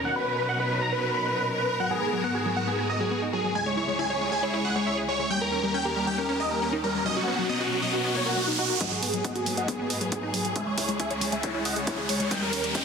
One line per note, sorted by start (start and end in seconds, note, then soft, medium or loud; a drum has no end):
0.00 1.77 C#4 medium
0.05 1.78 B2 medium
0.05 1.78 F#3 medium
0.05 1.78 D#4 medium
0.05 3.52 A#4 medium
0.05 0.15 F#5 medium
0.16 0.25 B4 medium
0.27 0.36 B4 medium
0.38 0.47 B4 medium
0.49 0.58 F#5 medium
0.60 0.69 B4 medium
0.71 0.80 B4 medium
0.82 0.91 A#5 medium
0.92 1.02 B4 medium
1.03 1.13 B4 medium
1.14 1.24 B5 medium
1.25 1.35 B4 medium
1.36 1.46 B4 medium
1.58 1.68 B4 medium
1.69 1.79 B4 medium
1.80 3.53 G#2 medium
1.80 3.53 D#3 medium
1.80 1.90 F#3 medium
1.80 3.53 B3 medium
1.80 3.53 F#4 medium
1.80 1.90 F#5 loud
1.91 1.98 F#3 medium
1.91 2.01 G#4 medium
2.02 2.06 B3 medium
2.02 2.11 G#4 medium
2.13 2.23 F#3 medium
2.13 2.22 G#4 medium
2.24 2.34 B3 loud
2.24 2.33 F#5 medium
2.35 2.42 F#4 medium
2.35 2.44 G#4 medium
2.46 2.53 F#3 medium
2.46 2.55 G#4 medium
2.56 2.61 F#3 medium
2.56 2.66 F#5 medium
2.68 2.75 B3 loud
2.68 2.77 G#4 medium
2.79 2.88 B3 loud
2.79 2.88 G#4 medium
2.89 2.94 B3 medium
2.89 2.99 D#5 medium
3.00 3.11 F#3 medium
3.00 3.10 G#4 medium
3.11 3.22 B3 loud
3.11 3.21 G#4 medium
3.22 3.27 D#4 medium
3.33 3.41 F#3 medium
3.33 3.43 G#4 medium
3.44 3.49 F#3 medium
3.44 3.54 G#4 medium
3.55 5.29 C#2 medium
3.55 5.29 C#3 medium
3.55 3.65 G#3 medium
3.55 5.29 G#3 medium
3.55 5.29 E4 medium
3.55 5.29 G#4 medium
3.55 3.65 G#5 loud
3.66 3.74 G#3 medium
3.66 3.76 C#5 medium
3.77 3.81 E4 medium
3.77 3.87 C#5 medium
3.88 3.98 G#3 medium
3.88 3.98 C#5 medium
3.99 4.09 E4 medium
3.99 4.09 G#5 medium
4.10 4.17 C#5 medium
4.10 4.20 C#5 medium
4.21 4.28 G#3 medium
4.21 4.31 C#5 medium
4.32 4.36 G#3 medium
4.32 4.41 G#5 medium
4.43 4.50 E4 loud
4.43 4.53 C#5 medium
4.54 4.64 E4 loud
4.54 4.63 C#5 medium
4.65 4.69 E4 medium
4.65 4.74 F#5 medium
4.76 4.86 G#3 medium
4.76 4.85 C#5 medium
4.87 4.97 E4 loud
4.87 4.96 C#5 medium
4.97 5.02 G#4 loud
5.08 5.16 G#3 medium
5.08 5.18 C#5 medium
5.19 5.24 G#3 medium
5.19 5.29 C#5 medium
5.30 7.04 D#2 medium
5.30 7.04 D#3 medium
5.30 5.40 G3 medium
5.30 7.04 A#3 medium
5.30 8.77 C#4 medium
5.30 7.04 G4 medium
5.30 5.40 G5 loud
5.30 riser medium
5.41 5.49 G3 medium
5.41 5.51 A#4 medium
5.52 5.57 C#4 medium
5.52 5.62 A#4 medium
5.63 5.74 G3 medium
5.63 5.73 A#4 medium
5.74 5.85 C#4 loud
5.74 5.84 G5 medium
5.85 5.93 G4 medium
5.85 5.95 A#4 medium
5.96 6.04 G3 medium
5.96 6.06 A#4 medium
6.07 6.11 G3 medium
6.07 6.17 G5 medium
6.18 6.25 C#4 loud
6.18 6.28 A#4 medium
6.29 6.39 C#4 loud
6.29 6.39 A#4 medium
6.40 6.44 C#4 medium
6.40 6.49 D#5 medium
6.51 6.61 G3 medium
6.51 6.60 A#4 medium
6.62 6.72 C#4 loud
6.62 6.71 A#4 medium
6.73 6.77 D#4 loud
6.84 6.91 G3 medium
6.84 6.93 A#4 medium
6.95 6.99 G3 medium
6.95 7.04 A#4 medium
7.06 8.79 B2 medium
7.06 7.15 F#3 medium
7.06 8.79 F#3 medium
7.06 8.79 A#3 medium
7.06 8.79 D#4 medium
7.06 7.15 D#5 medium
7.17 7.24 F#3 medium
7.17 7.26 F#4 medium
7.28 7.32 B3 medium
7.28 7.37 F#4 medium
7.38 7.49 F#3 medium
7.38 7.48 F#4 medium
7.49 7.60 B3 medium
7.49 7.59 D#5 medium
7.60 7.68 F#4 medium
7.60 7.70 F#4 medium
7.71 7.79 F#3 medium
7.71 7.81 F#4 medium
7.82 7.87 F#3 medium
7.82 7.92 D#5 medium
7.93 8.01 B3 loud
7.93 8.03 F#4 medium
8.04 8.14 B3 loud
8.04 8.14 F#4 medium
8.15 8.22 A#3 medium
8.15 8.25 C#5 medium
8.26 8.36 F#4 medium
8.26 8.36 A#4 medium
8.37 8.44 A#3 medium
8.37 8.47 F#4 medium
8.48 8.55 D#4 medium
8.59 8.63 D#4 medium
8.59 8.68 F#4 medium
8.70 8.79 F#4 medium
8.70 8.77 A#4 medium
8.81 10.54 G#2 medium
8.81 8.90 F#3 medium
8.81 10.54 F#3 medium
8.81 10.54 A#3 medium
8.81 10.54 B3 medium
8.81 12.28 G#4 medium
8.81 8.90 D#5 medium
8.81 8.90 F#5 loud
8.81 kick loud
8.81 closed hi-hat medium
8.81 riser medium
8.91 8.99 F#3 medium
8.91 9.01 G#4 medium
9.02 9.07 B3 medium
9.02 9.12 G#4 medium
9.02 open hi-hat loud
9.13 9.24 F#3 medium
9.13 9.23 G#4 medium
9.13 closed hi-hat soft
9.24 9.35 B3 loud
9.24 9.34 D#5 medium
9.24 9.34 F#5 medium
9.24 kick loud
9.24 closed hi-hat medium
9.35 9.43 F#4 medium
9.35 9.45 G#4 medium
9.35 closed hi-hat soft
9.46 9.54 F#3 medium
9.46 9.56 G#4 medium
9.46 open hi-hat medium
9.57 9.62 F#3 medium
9.57 9.67 D#5 medium
9.57 9.67 F#5 medium
9.57 closed hi-hat soft
9.68 9.76 B3 loud
9.68 9.78 G#4 medium
9.68 kick loud
9.68 closed hi-hat medium
9.79 9.89 B3 loud
9.79 9.89 G#4 medium
9.90 9.95 B3 medium
9.90 10.00 B4 medium
9.90 10.00 D#5 medium
9.90 open hi-hat loud
10.01 10.12 F#3 medium
10.01 10.11 G#4 medium
10.01 closed hi-hat medium
10.12 10.22 B3 loud
10.12 10.22 G#4 medium
10.12 kick loud
10.12 closed hi-hat medium
10.23 10.27 D#4 loud
10.34 10.41 F#3 medium
10.34 10.44 G#4 medium
10.34 open hi-hat medium
10.45 10.49 F#3 medium
10.45 10.55 G#4 medium
10.45 closed hi-hat medium
10.56 12.29 C#2 medium
10.56 12.29 C#3 medium
10.56 12.29 G#3 medium
10.56 10.65 G#3 medium
10.56 12.29 E4 medium
10.56 10.66 E5 medium
10.56 10.66 G#5 loud
10.56 kick loud
10.56 closed hi-hat medium
10.67 10.74 G#3 medium
10.67 10.76 C#5 medium
10.78 10.82 E4 medium
10.78 10.87 C#5 medium
10.78 kick medium
10.78 open hi-hat loud
10.89 10.99 G#3 medium
10.89 10.98 C#5 medium
10.89 closed hi-hat soft
11.00 11.10 E4 loud
11.00 11.09 E5 medium
11.00 11.09 G#5 medium
11.00 kick loud
11.00 closed hi-hat medium
11.11 11.18 C#5 medium
11.11 11.20 C#5 medium
11.11 closed hi-hat soft
11.21 11.29 G#3 medium
11.21 11.31 C#5 medium
11.21 open hi-hat medium
11.32 11.37 G#3 medium
11.32 11.42 E5 medium
11.32 11.42 G#5 loud
11.32 closed hi-hat soft
11.43 11.51 E4 loud
11.43 11.53 C#5 medium
11.43 kick loud
11.43 closed hi-hat medium
11.54 11.64 E4 loud
11.54 11.64 C#5 medium
11.65 11.70 E4 medium
11.65 11.75 D#5 medium
11.65 11.75 F#5 medium
11.65 open hi-hat loud
11.76 11.87 G#3 medium
11.76 11.86 C#5 medium
11.76 closed hi-hat soft
11.87 11.98 E4 loud
11.87 11.97 C#5 medium
11.87 kick loud
11.87 closed hi-hat medium
11.98 12.03 G#4 loud
12.09 12.17 G#3 medium
12.09 12.19 C#5 medium
12.09 open hi-hat medium
12.20 12.24 G#3 medium
12.20 12.30 C#5 medium
12.20 closed hi-hat soft
12.31 12.85 D#2 medium
12.31 12.85 D#3 medium
12.31 12.41 G3 medium
12.31 12.85 C#4 medium
12.31 12.85 G4 medium
12.31 12.85 A#4 medium
12.31 12.41 D#5 medium
12.31 12.41 G5 medium
12.31 kick loud
12.31 closed hi-hat medium
12.42 12.49 G3 medium
12.42 12.52 A#4 medium
12.53 12.57 C#4 medium
12.53 12.63 A#4 medium
12.53 open hi-hat loud
12.64 12.74 G3 medium
12.64 12.74 A#4 medium
12.64 closed hi-hat soft
12.75 12.85 C#4 loud
12.75 12.85 D#5 medium
12.75 12.85 G5 medium
12.75 kick loud
12.75 closed hi-hat medium